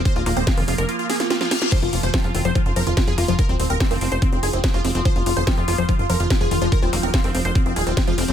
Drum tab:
CC |----------------|x---------------|----------------|----------------|
HH |xxoxxooxxxoxxxox|xxoxxxoxxxoxxxox|xxoxxooxxxoxxxox|xxoxxxo-xxoxxxox|
SD |----o-----oooooo|----o-------o---|----o-------o---|----o-------o---|
BD |o---o-----------|o---o---o---o---|o---o---o---o---|o---o---o---o---|

CC |----------------|
HH |xxoxxooxxxoxxxox|
SD |----o-------o---|
BD |o---o---o---o---|